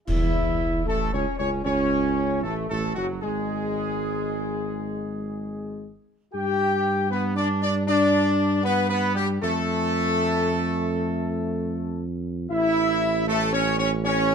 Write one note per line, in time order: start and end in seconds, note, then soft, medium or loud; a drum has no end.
0.08 0.83 E2 loud
0.08 0.83 E4 loud
0.08 0.84 E4 loud
0.08 0.83 E5 medium
0.08 concert bass drum medium
0.08 crash medium
0.86 1.12 A1 medium
0.86 0.98 A3 medium
0.86 1.12 A3 loud
0.86 1.11 A4 loud
1.14 1.25 C#2 loud
1.14 1.38 C#4 loud
1.14 1.37 C#5 medium
1.38 1.64 C#2 loud
1.38 1.63 C#4 medium
1.38 1.64 C#4 loud
1.38 1.50 C#5 loud
1.64 2.46 C#2 loud
1.64 2.39 C#4 loud
1.64 2.40 C#4 loud
1.64 2.40 C#5 loud
2.43 2.70 A1 loud
2.43 2.69 A3 loud
2.43 2.68 A3 medium
2.43 2.55 A4 loud
2.70 2.95 A1 loud
2.70 2.95 A3 loud
2.70 2.82 A3 medium
2.70 2.94 A4 loud
2.95 3.25 F#1 medium
2.95 3.23 F#3 loud
2.95 3.09 F#3 medium
2.95 3.07 F#4 loud
3.21 5.96 G#1 medium
3.21 5.91 G#3 medium
3.21 5.91 G#3 loud
3.21 5.91 G#4 loud
6.33 9.39 G2 loud
6.33 7.07 G4 loud
6.33 7.07 G5 loud
7.11 7.35 B3 loud
7.11 7.37 B3 loud
7.11 7.22 B4 loud
7.36 7.47 D4 loud
7.36 7.61 D4 loud
7.36 7.48 D5 loud
7.62 7.86 D4 loud
7.62 7.76 D4 medium
7.62 7.74 D5 loud
7.87 8.61 D4 loud
7.87 8.62 D4 loud
7.87 8.61 D5 loud
8.63 8.88 B3 loud
8.63 8.89 B3 loud
8.63 8.88 B4 loud
8.89 9.14 B3 loud
8.89 9.16 B3 loud
8.89 9.14 B4 loud
9.15 9.40 G3 loud
9.15 9.30 G3 loud
9.15 9.28 G4 loud
9.41 12.47 F2 loud
9.41 12.07 A3 loud
9.41 12.09 A3 loud
9.41 12.08 A4 loud
12.50 14.35 A1 loud
12.50 13.24 E4 loud
12.50 13.24 E5 loud
13.27 13.39 A3 loud
13.27 13.52 A3 loud
13.27 13.52 A4 loud
13.53 13.65 C#4 loud
13.53 13.77 C#4 loud
13.53 13.77 C#5 loud
13.79 13.91 C#4 loud
13.79 13.92 C#4 loud
13.79 13.90 C#5 loud
14.05 14.35 C#4 loud
14.05 14.35 C#5 loud